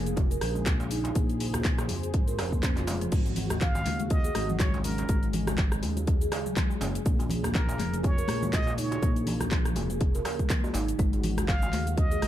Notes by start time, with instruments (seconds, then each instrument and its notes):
Already playing: analog synth bass F1, analog synth pad C#3 A#3 G#4
0.06 marimba G#4, closed hi-hat, shaker
0.17 kick, closed hi-hat, djembe tone, shaker
0.31 marimba A#4, closed hi-hat, shaker
0.41 analog synth bass A#1, cross-stick, open hi-hat, shaker
0.55 marimba G#3, djembe tone, shaker
0.66 marimba A#3, kick, clap, closed hi-hat, djembe bass, shaker
0.80 djembe slap, shaker
0.91 marimba D#4, open hi-hat, shaker
1.04 closed hi-hat, djembe slap, djembe tone, shaker
1.15 analog synth bass A#1, marimba A#3, analog synth pad C5, kick, closed hi-hat, shaker
1.30 closed hi-hat, shaker
1.40 open hi-hat, djembe tone, shaker
1.53 marimba A#3, cross-stick, closed hi-hat, djembe bass, shaker
1.65 kick, clap, closed hi-hat, shaker
1.78 marimba F3, cross-stick, djembe slap, shaker
1.89 analog synth bass F1, open hi-hat, djembe tone, shaker
2.03 marimba G#4, closed hi-hat, shaker
2.14 analog synth bass G#1, kick, closed hi-hat, shaker
2.27 marimba A#4, closed hi-hat, djembe tone, shaker
2.38 analog synth bass F1, marimba C#4, cross-stick, open hi-hat, djembe slap, shaker
2.52 marimba A#3, kick, shaker
2.63 marimba C#4, kick, clap, closed hi-hat, shaker
2.76 marimba F4, clap, closed hi-hat, djembe tone, shaker
2.87 marimba G#3, open hi-hat, djembe slap, shaker
3.01 marimba F3, closed hi-hat, shaker
3.12 analog synth bass G#1, analog synth pad G#3 F#4, kick, closed hi-hat, crash, high conga, shaker
3.26 closed hi-hat, djembe tone, shaker
3.36 open hi-hat, low conga, shaker
3.50 marimba G#3, cross-stick, closed hi-hat, high conga, djembe bass, shaker
3.61 muted trumpet F5, kick, clap, closed hi-hat, low conga, shaker
3.75 marimba D#3, djembe slap, djembe tone, shaker
3.86 analog synth bass D#2, clap, open hi-hat, high conga, shaker
4.00 marimba F#4, closed hi-hat, high conga, shaker
4.10 muted trumpet D#5, kick, closed hi-hat, djembe tone, shaker
4.24 marimba G#4, closed hi-hat, shaker
4.35 analog synth bass G#1, cross-stick, open hi-hat, high conga, shaker
4.49 marimba F#3, low conga, shaker
4.59 marimba G#3, muted trumpet C#5, kick, clap, closed hi-hat, djembe tone, djembe bass, shaker
4.74 djembe slap, shaker
4.84 marimba C#4, muted trumpet A#4, open hi-hat, high conga, shaker
4.98 closed hi-hat, djembe slap, djembe tone, shaker
5.09 analog synth bass G#1, marimba G#3, analog synth pad G#4, kick, closed hi-hat, high conga, shaker
5.23 closed hi-hat, shaker
5.33 open hi-hat, low conga, shaker
5.47 marimba G#3, cross-stick, closed hi-hat, djembe tone, high conga, djembe bass, shaker
5.58 kick, clap, closed hi-hat, low conga, shaker
5.72 marimba D#3, cross-stick, shaker
5.83 analog synth bass D#2, open hi-hat, high conga, djembe tone, shaker
5.97 marimba F#4, closed hi-hat, high conga, shaker
6.07 kick, closed hi-hat, shaker
6.21 marimba G#4, closed hi-hat, shaker
6.32 cross-stick, open hi-hat, djembe slap, djembe tone, shaker
6.46 marimba F#3, high conga, shaker
6.56 marimba G#3, kick, clap, closed hi-hat, low conga, shaker
6.70 djembe tone, shaker
6.81 analog synth bass F#1, marimba C#4, open hi-hat, djembe slap, shaker
6.95 closed hi-hat, shaker
7.05 analog synth bass A#1, marimba A#3, analog synth pad A#3, kick, closed hi-hat, high conga, shaker
7.19 closed hi-hat, djembe tone, shaker
7.29 open hi-hat, low conga, shaker
7.43 marimba A#3, cross-stick, closed hi-hat, high conga, djembe bass, shaker
7.54 muted trumpet A#4, kick, clap, closed hi-hat, djembe tone, low conga, shaker
7.68 marimba F3, djembe slap, shaker
7.80 analog synth bass F1, clap, open hi-hat, high conga, shaker
7.93 marimba G#4, closed hi-hat, high conga, shaker
8.03 muted trumpet C#5, kick, closed hi-hat, djembe tone, shaker
8.18 marimba A#4, closed hi-hat, shaker
8.28 analog synth bass A#1, cross-stick, open hi-hat, high conga, shaker
8.43 marimba G#3, djembe tone, low conga, shaker
8.53 marimba A#3, muted trumpet D#5, kick, clap, closed hi-hat, djembe bass, shaker
8.67 djembe slap, shaker
8.77 marimba D#4, muted trumpet C#5, open hi-hat, high conga, shaker
8.91 closed hi-hat, djembe slap, djembe tone, shaker
9.02 analog synth bass A#1, marimba A#3, kick, closed hi-hat, high conga, shaker
9.16 closed hi-hat, shaker
9.27 open hi-hat, djembe tone, low conga, shaker
9.41 cross-stick, closed hi-hat, high conga, djembe bass, shaker
9.51 kick, clap, closed hi-hat, low conga, shaker
9.65 marimba F3, cross-stick, closed hi-hat, shaker
9.76 analog synth bass F1, open hi-hat, high conga, djembe tone, shaker
9.90 marimba G#4, closed hi-hat, high conga, shaker
10.01 kick, closed hi-hat, shaker
10.15 marimba A#4, closed hi-hat, djembe tone, shaker
10.25 cross-stick, open hi-hat, djembe slap, shaker
10.39 marimba G#3, kick, closed hi-hat, high conga, shaker
10.49 marimba A#3, kick, clap, closed hi-hat, low conga, shaker
10.64 djembe tone, shaker
10.74 analog synth bass G#1, marimba D#4, open hi-hat, djembe slap, shaker
10.88 closed hi-hat, shaker
10.99 analog synth bass G#1, analog synth pad C#3 G#3 F#4, marimba G#3, kick, closed hi-hat, high conga, shaker
11.13 closed hi-hat, djembe tone, shaker
11.24 open hi-hat, low conga, shaker
11.38 marimba G#3, cross-stick, closed hi-hat, high conga, djembe bass, shaker
11.48 muted trumpet F5, kick, clap, closed hi-hat, low conga, shaker
11.62 marimba D#3, djembe slap, djembe tone, shaker
11.73 analog synth bass D#2, clap, open hi-hat, high conga, shaker
11.86 marimba F#4, closed hi-hat, high conga, shaker
11.97 muted trumpet D#5, kick, closed hi-hat, djembe tone, shaker
12.11 marimba G#4, closed hi-hat, shaker
12.22 analog synth bass G#1, cross-stick, open hi-hat, high conga, shaker